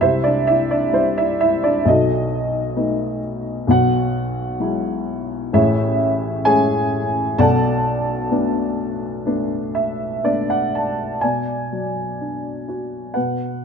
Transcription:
0.01 1.81 C2 medium
0.01 1.81 C3 medium
0.01 0.23 E4 medium
0.01 0.23 G4 medium
0.01 0.23 C5 medium
0.01 0.22 E5 medium
0.24 0.47 D4 medium
0.24 0.48 D5 medium
0.47 0.70 E4 medium
0.47 0.71 E5 medium
0.71 0.93 D4 medium
0.71 0.94 D5 medium
0.92 1.82 G3 soft
0.92 0.94 C4 soft
0.92 1.16 C4 medium
0.92 1.18 E4 medium
0.92 1.15 C5 medium
1.18 1.40 E4 medium
1.18 1.39 E5 medium
1.41 1.62 E4 medium
1.41 1.64 E5 medium
1.64 1.85 D4 medium
1.64 1.86 D5 medium
1.85 3.64 B1 medium
1.85 3.64 B2 medium
1.85 3.19 D#5 medium
1.89 2.75 D#4 medium
1.89 3.20 F#4 medium
1.89 3.20 A4 medium
2.76 3.65 A3 soft
2.76 3.65 B3 soft
2.76 3.65 D#4 medium
3.67 5.49 B1 medium
3.67 5.49 B2 medium
3.67 5.50 F#4 medium
3.67 5.50 F#5 medium
4.60 5.50 F#3 medium
4.60 5.50 G#3 soft
4.60 5.50 E4 medium
5.53 7.33 A1 medium
5.53 7.34 A2 medium
5.53 6.42 E4 medium
5.53 6.42 G#4 medium
5.53 6.42 C#5 medium
5.53 6.41 E5 medium
6.45 7.34 G#3 medium
6.45 7.35 A3 soft
6.45 7.35 C#4 medium
6.45 7.34 G#4 medium
6.45 7.34 C#5 medium
6.45 7.40 G#5 loud
7.38 11.20 B1 medium
7.38 11.20 B2 medium
7.38 10.22 A4 medium
7.38 10.22 D5 medium
7.38 10.22 F#5 medium
7.38 10.21 A5 loud
8.31 9.24 A3 medium
8.31 9.24 B3 soft
8.31 9.24 D4 medium
9.25 10.21 A3 medium
9.25 10.22 B3 soft
9.25 10.22 D4 medium
9.75 10.21 E5 medium
10.24 11.20 A3 medium
10.24 11.20 B3 soft
10.24 11.20 D4 medium
10.24 10.48 D5 medium
10.50 10.73 F#5 medium
10.75 11.20 A5 medium
11.21 13.12 B2 soft
11.21 13.12 D5 medium
11.21 13.20 G#5 medium
11.72 13.12 F#3 soft
12.21 13.13 D4 soft
12.68 13.14 F#4 soft
13.14 13.65 B2 medium
13.14 13.65 B4 soft
13.14 13.65 F#5 medium

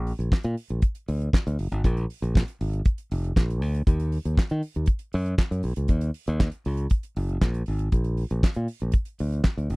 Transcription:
0.00 0.11 A#1 loud
0.07 open hi-hat medium
0.19 0.29 A#1 medium
0.19 closed hi-hat soft
0.32 kick loud
0.32 snare loud
0.32 clap medium
0.43 0.54 A#2 medium
0.43 closed hi-hat soft
0.57 open hi-hat medium
0.69 0.80 A#1 medium
0.69 closed hi-hat soft
0.82 kick loud
0.82 closed hi-hat medium
0.95 closed hi-hat soft
1.08 1.28 D2 medium
1.08 open hi-hat medium
1.21 closed hi-hat soft
1.33 kick loud
1.33 snare loud
1.33 clap medium
1.47 1.56 D2 medium
1.47 closed hi-hat soft
1.59 1.69 F#1 medium
1.59 open hi-hat medium
1.72 1.81 G#1 medium
1.72 closed hi-hat soft
1.84 2.04 A#1 loud
1.84 kick loud
1.84 closed hi-hat medium
1.97 closed hi-hat soft
2.10 open hi-hat medium
2.22 2.42 A#1 medium
2.22 closed hi-hat soft
2.35 kick loud
2.35 snare loud
2.35 clap medium
2.48 closed hi-hat soft
2.61 2.81 G#1 loud
2.61 open hi-hat medium
2.73 closed hi-hat soft
2.85 kick loud
2.85 closed hi-hat medium
2.98 closed hi-hat soft
3.11 3.31 F1 medium
3.11 open hi-hat medium
3.24 closed hi-hat soft
3.36 3.62 A#1 medium
3.36 kick loud
3.36 snare loud
3.36 clap medium
3.50 closed hi-hat soft
3.62 3.82 D2 medium
3.62 open hi-hat medium
3.75 closed hi-hat soft
3.87 4.17 D#2 medium
3.87 kick loud
3.87 closed hi-hat medium
4.00 closed hi-hat soft
4.12 open hi-hat medium
4.25 4.35 D#2 medium
4.25 closed hi-hat soft
4.37 kick loud
4.37 snare loud
4.37 clap medium
4.50 4.61 D#3 medium
4.50 closed hi-hat soft
4.63 open hi-hat medium
4.75 4.86 D#2 medium
4.75 closed hi-hat soft
4.86 kick loud
4.86 closed hi-hat medium
4.99 closed hi-hat soft
5.13 5.34 F#2 medium
5.13 open hi-hat medium
5.26 closed hi-hat soft
5.38 kick loud
5.38 snare loud
5.38 clap medium
5.51 5.61 F#2 medium
5.51 closed hi-hat soft
5.63 5.74 B1 medium
5.63 open hi-hat medium
5.76 5.87 C#2 medium
5.76 closed hi-hat soft
5.88 6.09 D#2 medium
5.88 kick medium
5.88 closed hi-hat medium
6.01 closed hi-hat soft
6.14 open hi-hat medium
6.27 6.48 D#2 loud
6.27 closed hi-hat soft
6.40 kick loud
6.40 snare loud
6.40 clap medium
6.51 closed hi-hat soft
6.65 6.86 C#2 medium
6.65 open hi-hat medium
6.77 closed hi-hat soft
6.90 kick loud
6.90 closed hi-hat medium
7.03 closed hi-hat soft
7.16 7.37 F#1 medium
7.16 open hi-hat medium
7.29 closed hi-hat soft
7.41 7.62 A#1 loud
7.41 kick loud
7.41 snare loud
7.41 clap medium
7.54 closed hi-hat soft
7.66 7.88 G#1 medium
7.66 open hi-hat medium
7.79 closed hi-hat medium
7.92 8.23 A#1 medium
7.92 kick medium
7.92 closed hi-hat medium
8.04 closed hi-hat soft
8.17 open hi-hat medium
8.30 8.41 A#1 medium
8.30 closed hi-hat soft
8.43 kick loud
8.43 snare loud
8.43 clap medium
8.54 8.66 A#2 medium
8.54 closed hi-hat soft
8.68 open hi-hat medium
8.80 8.92 A#1 medium
8.80 closed hi-hat soft
8.92 kick loud
8.92 closed hi-hat medium
9.05 closed hi-hat soft
9.19 9.40 D2 medium
9.19 open hi-hat medium
9.32 closed hi-hat soft
9.44 kick loud
9.44 snare loud
9.44 clap medium
9.57 9.68 D2 medium
9.57 closed hi-hat soft
9.70 9.76 F#1 medium
9.70 open hi-hat medium

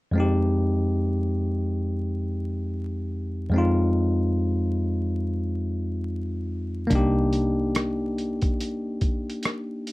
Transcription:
0.11 3.47 F2 medium
0.11 3.48 G#3 medium
0.15 3.49 C4 medium
0.15 3.50 D#4 medium
0.20 3.51 G4 medium
3.50 6.85 F2 medium
3.50 6.86 G#3 medium
3.54 6.87 C4 medium
3.54 6.88 D#4 medium
3.58 6.89 F4 medium
6.87 9.92 C2 medium
6.87 9.92 A#3 medium
6.87 9.92 D4 medium
6.87 kick medium
6.87 closed hi-hat medium
6.93 9.92 D#4 medium
6.93 9.92 G4 medium
7.33 closed hi-hat medium
7.75 cross-stick medium
7.75 closed hi-hat medium
8.18 closed hi-hat soft
8.42 kick medium
8.42 closed hi-hat soft
8.61 closed hi-hat medium
9.01 kick medium
9.01 closed hi-hat soft
9.30 closed hi-hat soft
9.43 cross-stick medium
9.43 closed hi-hat medium
9.87 closed hi-hat medium

